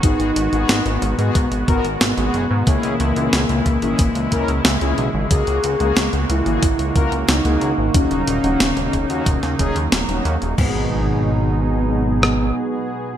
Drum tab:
CC |----------------|----------------|----------------|----------------|
HH |xxxxxxxxxxxxxxx-|xxxxxxxxxxxxxxx-|xxxxxxxxxxxxxxx-|xxxxxxxxxxxxxxxx|
SD |----o-------o---|----o-------o---|----o-------o---|----o----o--o---|
BD |o-------o-o-----|o-----o-o-o-----|o-------o-o-----|o-----o-o-o-----|

CC |x---------------|
HH |----------------|
SD |----------r-----|
BD |o---------------|